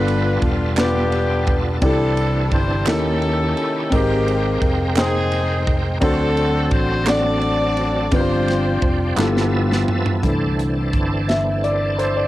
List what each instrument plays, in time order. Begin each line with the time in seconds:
Already playing: fingered electric bass G1, grand piano G2 B3 D4 F4 G4 A4, tonewheel organ G3 B3 F4 A4, horn section D4 F4 B4
0.08 ride
0.42 fingered electric bass E1, horn section F4, kick, ride
0.77 grand piano B3 D4 F4 G4 B4, horn section B3 D4 G4, snare, clap, ride
1.12 ride
1.47 kick, ride
1.81 fingered electric bass C2, grand piano C3 C4 D4 E4 G4 A4, tonewheel organ E3 C4 D4 A4, horn section D4 E4 A4, kick, ride
2.17 ride
2.51 fingered electric bass G1, horn section C5, kick, ride
2.86 fingered electric bass D#2, grand piano D#3 A#3 C#4 E4 G4 D#5, tonewheel organ D#3 C#4 E4 G4, horn section C#4 E4 A4, snare, clap, ride
3.22 ride
3.57 ride
3.90 fingered electric bass G#1, grand piano G#2 G#3 C4 D#4 G4 A#4, tonewheel organ G#3 C4 A#4 G5, horn section A#3 C4 G4, kick, ride
4.28 ride
4.62 fingered electric bass F1, kick, ride
4.96 grand piano C4 D#4 G#4 C5 G5, horn section C4 D#4 G#4, snare, clap, ride
5.32 ride
5.67 kick, ride
6.00 fingered electric bass D2, grand piano D3 C4 D4 F#4 A4 C5, tonewheel organ F#3 C4 D4 A4, horn section C4 F#4 A4, kick, ride
6.37 ride
6.71 fingered electric bass A1, horn section C5, kick, ride
7.06 grand piano C4 D4 F#4 A4 D5, horn section F#4 A4 D5, snare, clap, ride
7.42 ride
7.77 ride
8.11 fingered electric bass G1, grand piano G2 C4 D4 F4 G4 B4, tonewheel organ F3 B3 D4 G4, horn section F4 C5, kick, ride
8.18 tonewheel organ C4, grand piano C5
8.48 snare, ride
8.82 fingered electric bass F1, kick, ride
9.16 fingered electric bass G1, grand piano G2 B3 E4 F4 G4 A4, tonewheel organ F3 B3 A4 E5, snare, clap
9.37 snare
9.72 snare
9.88 floor tom
10.06 floor tom
10.23 fingered electric bass C2, grand piano D3 E3 A3, tonewheel organ E3 C4 D4 A4, kick, closed hi-hat
10.59 closed hi-hat
10.93 fingered electric bass G1, kick, closed hi-hat
11.28 grand piano E5, snare, closed hi-hat
11.64 grand piano D5, closed hi-hat
11.99 grand piano C5, closed hi-hat
12.17 grand piano D5